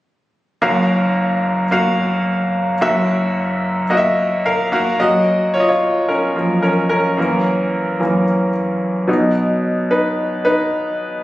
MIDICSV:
0, 0, Header, 1, 2, 480
1, 0, Start_track
1, 0, Key_signature, 6, "major"
1, 0, Tempo, 545802
1, 550, Time_signature, 4, 2, 24, 8
1, 9880, End_track
2, 0, Start_track
2, 0, Title_t, "Upright piano"
2, 0, Program_c, 0, 0
2, 543, Note_on_c, 0, 58, 66
2, 548, Note_on_c, 0, 30, 54
2, 549, Note_on_c, 0, 42, 53
2, 549, Note_on_c, 0, 66, 53
2, 554, Note_on_c, 0, 77, 70
2, 699, Control_c, 0, 64, 127
2, 1445, Note_off_c, 0, 58, 0
2, 1448, Note_off_c, 0, 66, 0
2, 1451, Note_off_c, 0, 77, 0
2, 1505, Note_on_c, 0, 58, 57
2, 1507, Note_on_c, 0, 66, 58
2, 1514, Note_on_c, 0, 77, 71
2, 2406, Note_off_c, 0, 58, 0
2, 2407, Note_off_c, 0, 66, 0
2, 2410, Note_off_c, 0, 77, 0
2, 2434, Note_off_c, 0, 30, 0
2, 2434, Note_off_c, 0, 42, 0
2, 2473, Note_on_c, 0, 58, 62
2, 2476, Note_on_c, 0, 30, 55
2, 2476, Note_on_c, 0, 42, 56
2, 2477, Note_on_c, 0, 66, 62
2, 2480, Note_on_c, 0, 76, 75
2, 2481, Control_c, 0, 64, 0
2, 2655, Control_c, 0, 64, 127
2, 3370, Note_off_c, 0, 58, 0
2, 3372, Note_off_c, 0, 66, 0
2, 3374, Note_off_c, 0, 76, 0
2, 3429, Note_on_c, 0, 58, 64
2, 3433, Note_on_c, 0, 66, 62
2, 3435, Note_on_c, 0, 75, 59
2, 3489, Note_off_c, 0, 75, 0
2, 3493, Note_on_c, 0, 76, 72
2, 3919, Note_on_c, 0, 77, 78
2, 3921, Note_on_c, 0, 70, 64
2, 4118, Note_off_c, 0, 30, 0
2, 4118, Note_off_c, 0, 42, 0
2, 4138, Note_off_c, 0, 58, 0
2, 4139, Note_off_c, 0, 66, 0
2, 4144, Note_off_c, 0, 77, 0
2, 4151, Note_on_c, 0, 58, 69
2, 4152, Note_on_c, 0, 66, 66
2, 4157, Note_on_c, 0, 77, 72
2, 4162, Control_c, 0, 64, 0
2, 4182, Note_off_c, 0, 76, 0
2, 4257, Control_c, 0, 64, 127
2, 4362, Note_off_c, 0, 70, 0
2, 4375, Note_off_c, 0, 58, 0
2, 4376, Note_off_c, 0, 66, 0
2, 4378, Note_off_c, 0, 77, 0
2, 4392, Note_on_c, 0, 42, 43
2, 4395, Note_on_c, 0, 75, 74
2, 4396, Note_on_c, 0, 54, 38
2, 4401, Control_c, 0, 64, 0
2, 4404, Note_on_c, 0, 58, 49
2, 4405, Note_on_c, 0, 66, 64
2, 4565, Control_c, 0, 64, 127
2, 4844, Note_off_c, 0, 66, 0
2, 4870, Note_on_c, 0, 73, 65
2, 4883, Note_on_c, 0, 65, 51
2, 4887, Note_off_c, 0, 75, 0
2, 4925, Note_on_c, 0, 75, 60
2, 4933, Note_off_c, 0, 73, 0
2, 4934, Note_off_c, 0, 65, 0
2, 4990, Note_off_c, 0, 75, 0
2, 5001, Note_on_c, 0, 73, 62
2, 5008, Note_on_c, 0, 65, 53
2, 5333, Note_off_c, 0, 65, 0
2, 5351, Note_on_c, 0, 70, 66
2, 5364, Note_off_c, 0, 73, 0
2, 5365, Note_on_c, 0, 61, 51
2, 5579, Note_off_c, 0, 42, 0
2, 5586, Note_off_c, 0, 58, 0
2, 5592, Note_on_c, 0, 42, 33
2, 5594, Note_on_c, 0, 53, 32
2, 5599, Note_on_c, 0, 58, 39
2, 5797, Note_off_c, 0, 70, 0
2, 5804, Note_off_c, 0, 61, 0
2, 5807, Note_off_c, 0, 42, 0
2, 5808, Note_off_c, 0, 53, 0
2, 5811, Note_off_c, 0, 58, 0
2, 5825, Note_on_c, 0, 70, 63
2, 5840, Note_on_c, 0, 61, 49
2, 5880, Note_off_c, 0, 70, 0
2, 5893, Note_off_c, 0, 61, 0
2, 6063, Note_on_c, 0, 70, 72
2, 6078, Note_on_c, 0, 61, 45
2, 6278, Note_off_c, 0, 54, 0
2, 6306, Note_on_c, 0, 42, 46
2, 6311, Note_on_c, 0, 52, 38
2, 6318, Note_on_c, 0, 58, 51
2, 6320, Control_c, 0, 64, 0
2, 6477, Control_c, 0, 64, 127
2, 7017, Note_off_c, 0, 42, 0
2, 7024, Note_off_c, 0, 52, 0
2, 7026, Note_off_c, 0, 58, 0
2, 7031, Note_on_c, 0, 42, 36
2, 7037, Note_on_c, 0, 52, 32
2, 7039, Note_on_c, 0, 58, 40
2, 7246, Note_off_c, 0, 42, 0
2, 7250, Note_off_c, 0, 52, 0
2, 7251, Note_off_c, 0, 58, 0
2, 7471, Note_off_c, 0, 70, 0
2, 7479, Note_off_c, 0, 61, 0
2, 7980, Note_on_c, 0, 47, 44
2, 7987, Note_on_c, 0, 54, 38
2, 7992, Note_on_c, 0, 63, 48
2, 7999, Control_c, 0, 64, 0
2, 8163, Control_c, 0, 64, 127
2, 8703, Note_off_c, 0, 63, 0
2, 8713, Note_on_c, 0, 71, 56
2, 8716, Note_on_c, 0, 63, 51
2, 9159, Note_off_c, 0, 63, 0
2, 9175, Note_off_c, 0, 71, 0
2, 9188, Note_on_c, 0, 71, 69
2, 9194, Note_on_c, 0, 63, 53
2, 9870, Note_off_c, 0, 47, 0
2, 9873, Note_off_c, 0, 54, 0
2, 9877, Note_off_c, 0, 63, 0
2, 9880, Note_off_c, 0, 71, 0
2, 9880, End_track
0, 0, End_of_file